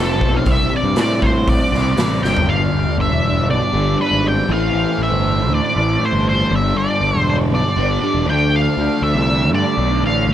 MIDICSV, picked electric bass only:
0, 0, Header, 1, 2, 480
1, 0, Start_track
1, 0, Tempo, 503778
1, 450, Time_signature, 4, 2, 24, 8
1, 9850, End_track
2, 0, Start_track
2, 0, Title_t, "Picked electric bass"
2, 0, Program_c, 0, 34
2, 0, Note_on_c, 0, 29, 89
2, 201, Note_off_c, 0, 29, 0
2, 201, Note_on_c, 0, 35, 83
2, 392, Note_off_c, 0, 35, 0
2, 443, Note_on_c, 0, 36, 87
2, 633, Note_off_c, 0, 36, 0
2, 796, Note_on_c, 0, 43, 73
2, 895, Note_off_c, 0, 43, 0
2, 925, Note_on_c, 0, 45, 74
2, 1488, Note_off_c, 0, 45, 0
2, 1639, Note_on_c, 0, 36, 89
2, 1830, Note_off_c, 0, 36, 0
2, 1879, Note_on_c, 0, 33, 77
2, 2100, Note_off_c, 0, 33, 0
2, 2120, Note_on_c, 0, 31, 67
2, 2340, Note_off_c, 0, 31, 0
2, 2362, Note_on_c, 0, 31, 96
2, 2552, Note_off_c, 0, 31, 0
2, 2606, Note_on_c, 0, 31, 72
2, 2701, Note_off_c, 0, 31, 0
2, 2836, Note_on_c, 0, 31, 89
2, 2935, Note_off_c, 0, 31, 0
2, 2961, Note_on_c, 0, 28, 75
2, 3327, Note_off_c, 0, 28, 0
2, 3327, Note_on_c, 0, 35, 75
2, 3421, Note_off_c, 0, 35, 0
2, 3557, Note_on_c, 0, 31, 94
2, 3749, Note_off_c, 0, 31, 0
2, 3920, Note_on_c, 0, 32, 70
2, 4204, Note_off_c, 0, 32, 0
2, 4276, Note_on_c, 0, 33, 106
2, 4467, Note_off_c, 0, 33, 0
2, 4512, Note_on_c, 0, 33, 72
2, 4611, Note_off_c, 0, 33, 0
2, 4751, Note_on_c, 0, 33, 84
2, 4851, Note_off_c, 0, 33, 0
2, 4878, Note_on_c, 0, 31, 80
2, 5235, Note_off_c, 0, 31, 0
2, 5235, Note_on_c, 0, 38, 78
2, 5333, Note_off_c, 0, 38, 0
2, 5490, Note_on_c, 0, 33, 91
2, 5676, Note_off_c, 0, 33, 0
2, 5840, Note_on_c, 0, 31, 79
2, 6123, Note_off_c, 0, 31, 0
2, 6202, Note_on_c, 0, 31, 96
2, 6391, Note_off_c, 0, 31, 0
2, 6441, Note_on_c, 0, 31, 68
2, 6536, Note_off_c, 0, 31, 0
2, 6683, Note_on_c, 0, 31, 85
2, 6778, Note_off_c, 0, 31, 0
2, 6813, Note_on_c, 0, 28, 78
2, 7162, Note_off_c, 0, 28, 0
2, 7162, Note_on_c, 0, 35, 86
2, 7257, Note_off_c, 0, 35, 0
2, 7403, Note_on_c, 0, 31, 89
2, 7591, Note_off_c, 0, 31, 0
2, 7761, Note_on_c, 0, 28, 80
2, 7856, Note_off_c, 0, 28, 0
2, 7875, Note_on_c, 0, 38, 87
2, 8254, Note_off_c, 0, 38, 0
2, 8358, Note_on_c, 0, 38, 73
2, 8455, Note_off_c, 0, 38, 0
2, 8597, Note_on_c, 0, 38, 86
2, 8694, Note_off_c, 0, 38, 0
2, 8719, Note_on_c, 0, 36, 75
2, 9079, Note_off_c, 0, 36, 0
2, 9079, Note_on_c, 0, 43, 79
2, 9175, Note_off_c, 0, 43, 0
2, 9314, Note_on_c, 0, 35, 84
2, 9535, Note_off_c, 0, 35, 0
2, 9543, Note_on_c, 0, 33, 81
2, 9769, Note_off_c, 0, 33, 0
2, 9789, Note_on_c, 0, 31, 83
2, 9850, Note_off_c, 0, 31, 0
2, 9850, End_track
0, 0, End_of_file